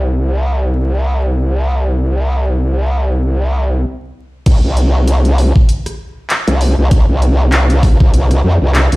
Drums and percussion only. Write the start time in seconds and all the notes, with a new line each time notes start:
4.46 kick, closed hi-hat, crash
4.77 closed hi-hat
5.08 closed hi-hat
5.25 closed hi-hat
5.38 open hi-hat
5.56 kick
5.69 closed hi-hat
5.86 cross-stick, closed hi-hat
6.30 clap, closed hi-hat
6.47 closed hi-hat
6.61 open hi-hat
6.91 kick, cross-stick, closed hi-hat
7.22 closed hi-hat
7.52 clap, closed hi-hat
7.70 closed hi-hat
7.83 kick, open hi-hat
8.00 kick, cross-stick
8.14 closed hi-hat
8.31 cross-stick, closed hi-hat
8.75 clap, closed hi-hat
8.92 closed hi-hat